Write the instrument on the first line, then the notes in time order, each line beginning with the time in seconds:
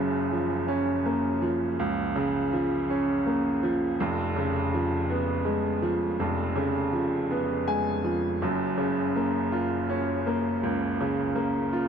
upright piano
Already playing: F#1 F#2 C#3
0.32 F3
0.68 C#4
1.06 A#3
1.42 F3
1.79 C#2
2.16 C#3
2.53 F3
2.90 C#4
3.26 A#3
3.63 F3
4.00 F1 F2
4.36 C#3
4.74 F3
5.10 B3
5.45 G#3
5.82 F3
6.20 F1 F2
6.56 C#3
6.93 F3
7.31 B3
7.68 G#3 G#5
8.04 F3
8.42 F#1 F#2
8.78 C#3
9.16 A#3
9.52 F4
9.89 C#4
10.27 A#3
10.63 C#2
11.01 C#3
11.36 A#3
11.73 F4